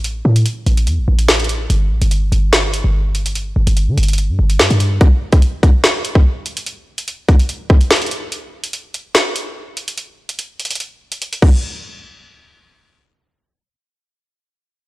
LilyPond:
<<
  \new Staff \with { instrumentName = "808-style bass" } { \clef bass \time 4/4 \key g \dorian \tempo 4 = 145 a,,8 a,8 r8 a,,8 e,16 a,,16 a,,4. | g,,8 a,,16 g,,8. g,,4~ g,,16 g,,4~ g,,16~ | g,,8 g,,16 g,,8 d16 g,,8. g,16 g,,8 g,16 g,8. | r1 |
r1 | r1 | r1 | r1 |
r1 | }
  \new DrumStaff \with { instrumentName = "Drums" } \drummode { \time 4/4 hh8. hh16 hh8 hh16 hh16 hh8. hh16 <hh sn>32 hh32 hh32 hh32 hh8 | hh8. hh16 hh8 hh8 sn8 hh8 r8 hh16 hh16 | hh8. hh16 hh8 hh32 hh32 hh32 hh32 hh8. hh16 <hh sn>16 hh16 hh8 | <hh bd>8. <hh bd>16 hh8 <hh bd>8 sn8 hh16 bd16 r8 hh16 hh16 |
hh8. hh16 hh8 <hh bd>16 hh16 hh8 bd16 hh16 <hh sn>32 hh32 hh32 hh32 hh8 | hh8. hh16 hh8 hh8 sn8 hh8 r8 hh16 hh16 | hh8. hh16 hh8 hh32 hh32 hh32 hh32 hh8. hh16 hh16 hh16 <cymc bd>8 | r4 r4 r4 r4 |
r4 r4 r4 r4 | }
>>